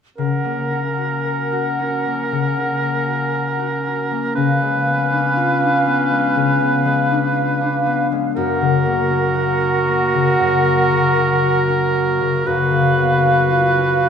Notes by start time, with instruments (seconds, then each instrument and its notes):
0.16 harp C#3, clarinet C#4, oboe A#4, flute section F#5
0.44 harp A#3
0.71 harp C#4
0.98 harp F#4
1.25 harp A#4
1.52 harp F#4
1.79 harp C#4
2.05 harp A#3
2.32 harp C#3
2.57 harp C#4
2.83 harp A#3
3.08 harp F#4
3.34 harp A#4
3.59 harp F#4
3.86 harp C#4
4.11 harp A#3
4.35 harp C#3, clarinet C#4, oboe B4, flute section F5
4.62 harp G#3
4.87 harp B3
5.11 harp D4
5.36 harp F4
5.62 harp D4
5.86 harp B3
6.11 harp G#3
6.36 harp C#3
6.61 harp B3
6.85 harp G#3
7.10 harp D4
7.36 harp F4
7.61 harp D4
7.86 harp B3
8.12 harp G#3
8.36 harp F#2, clarinet F#4, oboe A#4, flute section F#5
8.61 harp C#3
8.85 harp A#3
9.10 harp C#4
9.35 harp F#4
9.61 harp C#4
9.87 harp A#3
10.14 harp C#3
10.40 harp F#2
10.65 harp A#3
10.91 harp C#3
11.17 harp C#4
11.43 harp F#4
11.69 harp C#4
11.95 harp A#3
12.21 harp C#3
12.45 harp F#2, clarinet F#4, oboe B4, flute section F5
12.71 harp C#3
12.98 harp B3
13.24 harp C#4
13.50 harp F4
13.77 harp C#4
14.05 harp B3